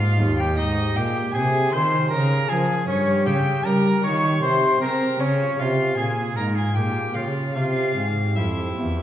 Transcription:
Already playing: G#2 F4 F5
0.01 D#4
0.20 D#2 F4
0.39 D#4 G4 G5
0.58 G#2 D#4 D#5
0.79 G4
0.96 A#2 G4 G#4 G5
1.17 G4
1.34 C3 G#4 G#5
1.54 G4
1.72 D#3 F4 C5 C6
1.93 G4
2.10 C#3 A#4 A#5
2.32 G#4
2.49 F3 G#4 A#4 G#5
2.70 G#4
2.88 G2 C#4 C#5
3.10 G4
3.26 C#3 G4 G#4 G5
3.47 G4
3.65 G3 A#4 A#5
3.86 G4
4.04 D#3 F4 C#5 C#6
4.25 G4
4.43 C3 C5 C6
4.63 G4
4.81 C4 G#4 A#4 A#5
5.03 G4
5.20 C#3 C#4 C#5
5.40 F4
5.59 C3 F4 G4 F5
5.80 F4
5.97 A#2 G#4 G#5
6.18 F4
6.36 G#2 D#4 A#4 A#5
6.55 F4 G#4 G#5
6.75 A#2 G4 G#4 G5
6.96 F4
7.14 C#3 F4 G4 F5
7.36 F4
7.54 C3 F4 F5
7.77 G4
7.96 G#2 G#4
8.18 G4
8.36 F2 E4 C5 E5
8.57 G4
8.76 E2 F4
8.97 G4

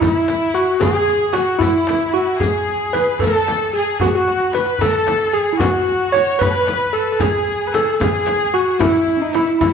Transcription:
0.00 E4, riq, tombak dum, frame drum
0.28 riq, tombak tek, frame drum
0.55 F#4, riq
0.80 G#4, riq, frame drum, tombak dum
0.87 G#4
0.95 G#4
1.02 G#4
1.09 G#4, riq, tombak ka
1.17 G#4
1.33 F#4, riq, tombak tek, frame drum
1.59 E4, tombak dum, frame drum
1.63 riq
1.87 riq, tombak tek, frame drum
2.14 F#4, riq
2.40 G#4, riq, tombak dum, frame drum
2.67 riq, tombak ka
2.93 B4, riq, tombak tek, frame drum
3.19 A4, tombak dum, frame drum
3.23 riq
3.47 riq, tombak tek, frame drum
3.73 G#4, tombak ka
4.00 F#4, riq, tombak dum, frame drum
4.08 G#4
4.13 F#4
4.28 tombak tek
4.40 tombak ka
4.52 B4, riq, tombak tek, frame drum
4.66 tombak ka
4.79 A4, riq, tombak dum, frame drum
5.07 riq, tombak tek, frame drum
5.32 G#4, riq
5.53 E4
5.59 F#4, riq, tombak dum, frame drum
5.88 riq, tombak ka
6.12 C#5, riq, tombak tek, frame drum
6.39 B4, riq, frame drum, tombak dum
6.67 riq, tombak tek, frame drum
6.93 A4, riq
7.12 A4
7.19 G#4, riq, tombak dum, frame drum
7.47 riq, tombak ka
7.67 B4
7.73 A4, riq, tombak tek, frame drum
7.98 G#4, riq, frame drum, tombak dum
8.26 riq, tombak tek, frame drum
8.53 F#4, riq
8.79 E4, riq, tombak dum, frame drum
9.07 riq, tombak ka
9.17 C#4 D#4
9.22 D#4
9.33 E4, riq, tombak tek, frame drum
9.60 E4, riq, frame drum, tombak dum

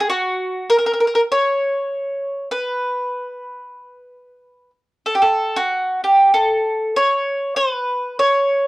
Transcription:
0.00 G#4
0.10 F#4
0.70 A#4
0.78 A#4
0.86 A#4
0.94 A#4
1.00 A#4
1.07 A#4
1.15 A#4
1.32 C#5
2.51 B4
5.06 A4
5.15 G4
5.22 A4
5.56 F#4
6.04 G4
6.34 A4
6.96 C#5
7.56 B4
8.19 C#5

